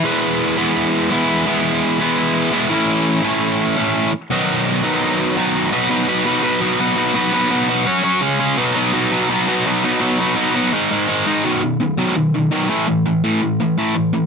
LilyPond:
\new Staff \with { instrumentName = "Distorted electric guitar" } { \clef bass \time 4/4 \key b \mixolydian \tempo 4 = 168 <e gis b e'>4. <e gis b e'>4. <e gis b e'>4 | <e gis b e'>4. <e gis b e'>4. <e gis b e'>8 <a, e a cis' e'>8~ | <a, e a cis' e'>4 <a, e a cis' e'>4. <a, e a cis' e'>4 r8 | <b, dis fis b dis'>4. <b, dis fis b dis'>4. <b, dis fis b dis'>4 |
<b, fis b dis' fis' b'>8 <b, fis b dis' fis' b'>8 <b, fis b dis' fis' b'>8 <b, fis b dis' fis' b'>8 <b, fis b dis' fis' b'>8 <b, fis b dis' fis' b'>8 <b, fis b dis' fis' b'>8 <b, fis b dis' fis' b'>8 | <b, fis b dis' fis' b'>8 <b, fis b dis' fis' b'>8 <b, fis b dis' fis' b'>8 <b, fis b dis' fis' b'>8 <fis cis' fis' cis''>8 <fis cis' fis' cis''>8 <cis gis cis' gis'>8 <cis gis cis' gis'>8 | <b, fis b dis'>8 <b, fis b dis'>8 <b, fis b dis'>8 <b, fis b dis'>8 <b, fis b dis'>8 <b, fis b dis'>8 <b, fis b dis'>8 <b, fis b dis'>8 | <b, fis b dis'>8 <b, fis b dis'>8 <b, fis b dis'>8 <b, fis b dis'>8 <gis, dis gis dis'>8 <gis, dis gis dis'>8 <gis, dis gis dis'>8 <gis, dis gis dis'>8 |
<b, dis fis>8 <b, dis>8 <b, dis>8 <b, dis fis>8 <b, dis>8 <b, dis>8 <b, dis fis>8 <a, e a>8 | <a, e>8 <a, e>8 <a, e a>8 <a, e>8 <a, e>8 <a, e a>8 <a, e>8 <a, e>8 | }